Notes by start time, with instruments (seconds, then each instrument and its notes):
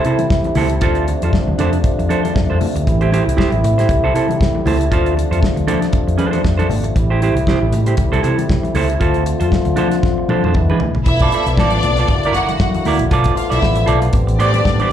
Already playing: french horn section C3 G3 A3 E4
0.05 fingered electric bass C3, clean electric guitar E4 A4 C5, closed hi-hat
0.19 muted clean electric guitar stroke, closed hi-hat, high conga
0.30 kick, snare
0.44 muted clean electric guitar stroke, closed hi-hat, high conga
0.55 fingered electric bass C#2, clean electric guitar E4 A4 C5, open hi-hat, low conga
0.70 muted clean electric guitar stroke, closed hi-hat
0.81 fingered electric bass D2, french horn section F3 A3 D4, clean electric guitar F4 A4 C5, kick, closed hi-hat, muted conga
0.95 closed hi-hat
1.07 muted clean electric guitar stroke, closed hi-hat, muted conga
1.22 fingered electric bass F2, clean electric guitar F4 A4 C5, closed hi-hat
1.33 muted clean electric guitar stroke, kick, snare, high conga
1.47 fingered electric bass D2, muted clean electric guitar stroke, high conga
1.58 fingered electric bass F2, french horn section A3, clean electric guitar D4 A4 C5, closed hi-hat, muted conga, low conga
1.73 muted clean electric guitar stroke, closed hi-hat
1.84 muted clean electric guitar stroke, kick, closed hi-hat
1.99 fingered electric bass F2, muted clean electric guitar stroke, closed hi-hat
2.09 fingered electric bass F3, clean electric guitar D4 A4 C5, closed hi-hat
2.23 clean electric guitar D4 A4 C5, closed hi-hat, high conga
2.35 fingered electric bass F2, muted clean electric guitar stroke, kick, snare
2.49 fingered electric bass F2, clean electric guitar D4 A4 C5, high conga
2.61 muted clean electric guitar stroke, open hi-hat, muted conga, low conga
2.75 fingered electric bass D2, muted clean electric guitar stroke, closed hi-hat
2.85 fingered electric bass A1, french horn section G3 E4, muted clean electric guitar stroke, kick, closed hi-hat
3.01 clean electric guitar E4 G4 C5, closed hi-hat
3.12 clean electric guitar E4 G4 C5, closed hi-hat, muted conga
3.26 fingered electric bass C2, muted clean electric guitar stroke, closed hi-hat
3.37 clean electric guitar E4 G4 C5, kick, snare, high conga
3.52 fingered electric bass A1, muted clean electric guitar stroke, closed hi-hat
3.63 fingered electric bass A2, muted clean electric guitar stroke, closed hi-hat, muted conga, low conga
3.78 clean electric guitar E4 G4 C5, snare, closed hi-hat
3.87 fingered electric bass C2, french horn section C3, muted clean electric guitar stroke, kick, closed hi-hat
4.02 fingered electric bass C2, clean electric guitar E4 A4 C5
4.14 fingered electric bass C3, clean electric guitar E4 A4 C5, closed hi-hat
4.29 muted clean electric guitar stroke, closed hi-hat, high conga
4.41 kick, snare, muted conga
4.55 muted clean electric guitar stroke, high conga
4.66 fingered electric bass C#2, clean electric guitar E4 A4 C5, open hi-hat, low conga
4.80 muted clean electric guitar stroke, closed hi-hat
4.91 fingered electric bass D2, french horn section F3 D4, clean electric guitar F4 A4 C5, kick, closed hi-hat
5.06 closed hi-hat
5.16 muted clean electric guitar stroke, closed hi-hat, muted conga
5.31 fingered electric bass F2, clean electric guitar F4 A4 C5, closed hi-hat
5.42 muted clean electric guitar stroke, kick, snare, muted conga, high conga
5.56 fingered electric bass D2, muted clean electric guitar stroke, closed hi-hat
5.67 fingered electric bass F3, clean electric guitar D4 A4 C5, french horn section D4, closed hi-hat, muted conga, low conga
5.82 muted clean electric guitar stroke, snare, closed hi-hat
5.92 muted clean electric guitar stroke, kick, closed hi-hat
6.07 fingered electric bass F2, muted clean electric guitar stroke, closed hi-hat
6.18 fingered electric bass F3, clean electric guitar D4 A4 C5, closed hi-hat, muted conga
6.31 clean electric guitar D4 A4 C5, closed hi-hat, high conga
6.44 fingered electric bass F2, muted clean electric guitar stroke, kick, snare
6.58 clean electric guitar D4 A4 C5, closed hi-hat, high conga
6.69 fingered electric bass G#1, open hi-hat, muted conga, low conga
6.84 muted clean electric guitar stroke, closed hi-hat
6.96 fingered electric bass A1, french horn section G3 A3 E4, muted clean electric guitar stroke, kick, closed hi-hat, muted conga
7.10 clean electric guitar E4 G4 C5
7.22 clean electric guitar E4 G4 C5, closed hi-hat
7.35 fingered electric bass C2, muted clean electric guitar stroke, closed hi-hat
7.47 clean electric guitar E4 G4 C5, kick, snare, high conga
7.61 fingered electric bass A1, muted clean electric guitar stroke
7.72 fingered electric bass A2, muted clean electric guitar stroke, closed hi-hat, muted conga, low conga
7.86 clean electric guitar E4 G4 C5, closed hi-hat
7.97 fingered electric bass C2, french horn section C3 E4, muted clean electric guitar stroke, kick, closed hi-hat, muted conga
8.12 fingered electric bass C2, clean electric guitar E4 A4 C5, closed hi-hat
8.23 fingered electric bass C3, clean electric guitar E4 A4 C5, closed hi-hat, muted conga
8.38 muted clean electric guitar stroke, closed hi-hat, high conga
8.49 kick, snare
8.63 muted clean electric guitar stroke, closed hi-hat, high conga
8.74 fingered electric bass C#2, clean electric guitar E4 A4 C5, open hi-hat, muted conga, low conga
8.90 muted clean electric guitar stroke, closed hi-hat
9.00 fingered electric bass D2, french horn section D3 C4 F4, clean electric guitar F4 A4 C5, kick, closed hi-hat
9.14 closed hi-hat
9.26 muted clean electric guitar stroke, closed hi-hat
9.40 fingered electric bass F2, clean electric guitar F4 A4 C5, closed hi-hat
9.51 muted clean electric guitar stroke, kick, snare, muted conga, high conga
9.65 fingered electric bass D2, muted clean electric guitar stroke, closed hi-hat
9.76 fingered electric bass F3, french horn section C4, clean electric guitar D4 A4 C5, closed hi-hat, muted conga, low conga
9.90 muted clean electric guitar stroke, snare, closed hi-hat
10.03 fingered electric bass F3, muted clean electric guitar stroke, kick, snare, muted conga
10.18 muted clean electric guitar stroke
10.28 fingered electric bass F3, clean electric guitar D4 A4 C5, high tom, muted conga
10.43 fingered electric bass F2, clean electric guitar D4 A4 C5, high tom, high conga
10.54 fingered electric bass E2, french horn section G#3 B3 E4, muted clean electric guitar stroke, kick, mid tom
10.69 fingered electric bass E3, clean electric guitar D4 G#4 B4, high conga
10.80 muted clean electric guitar stroke, floor tom, low conga
10.95 fingered electric bass A#1, muted clean electric guitar stroke, floor tom
11.05 fingered electric bass B1, french horn section D3 F3 A3 B3, string section E4 E5, muted clean electric guitar stroke, kick, closed hi-hat, muted conga
11.19 clean electric guitar F4 A4 D5, kick, closed hi-hat
11.32 clean electric guitar F4 A4 D5, closed hi-hat, muted conga
11.46 fingered electric bass B1, muted clean electric guitar stroke, closed hi-hat
11.57 fingered electric bass A1, string section D4 D5, clean electric guitar F4 A4 D5, kick, snare, muted conga, high conga
11.71 muted clean electric guitar stroke, closed hi-hat
11.83 fingered electric bass B1, muted clean electric guitar stroke, closed hi-hat, muted conga, low conga
11.97 clean electric guitar F4 A4 D5, snare, closed hi-hat
12.07 fingered electric bass F#1, french horn section F#3 A#3 E4, muted clean electric guitar stroke, kick, closed hi-hat
12.23 clean electric guitar E4 A#4 D5, closed hi-hat
12.33 fingered electric bass F#1, clean electric guitar E4 A#4, string section F#4 F#5, closed hi-hat, muted conga
12.38 clean electric guitar D5
12.49 muted clean electric guitar stroke, closed hi-hat, high conga
12.60 fingered electric bass F#2, kick, snare
12.74 muted clean electric guitar stroke, closed hi-hat, high conga
12.85 fingered electric bass D2, clean electric guitar E4 A#4 D5, open hi-hat, low conga
12.99 fingered electric bass A#1, muted clean electric guitar stroke, closed hi-hat
13.10 fingered electric bass B1, french horn section F3 A3 B3, clean electric guitar F4 A4 D5, kick, closed hi-hat
13.24 kick, closed hi-hat
13.36 string section F4 F5, muted clean electric guitar stroke, closed hi-hat
13.50 fingered electric bass B1, string section E4 E5, clean electric guitar F4 A4 D5, closed hi-hat
13.61 fingered electric bass A1, muted clean electric guitar stroke, kick, snare, high conga
13.76 muted clean electric guitar stroke, closed hi-hat
13.86 fingered electric bass B1, clean electric guitar F4 A4 D5, closed hi-hat, low conga
14.02 muted clean electric guitar stroke, closed hi-hat
14.13 fingered electric bass A1, french horn section C4 G4, muted clean electric guitar stroke, kick, closed hi-hat, muted conga
14.27 fingered electric bass A1, muted clean electric guitar stroke, closed hi-hat
14.39 fingered electric bass A2, string section D4 D5, clean electric guitar G4 C5 D5, closed hi-hat, muted conga
14.54 clean electric guitar G4 C5 D5, closed hi-hat, high conga
14.64 fingered electric bass A2, muted clean electric guitar stroke, kick, snare, muted conga
14.80 clean electric guitar G4 C5 D5, closed hi-hat, high conga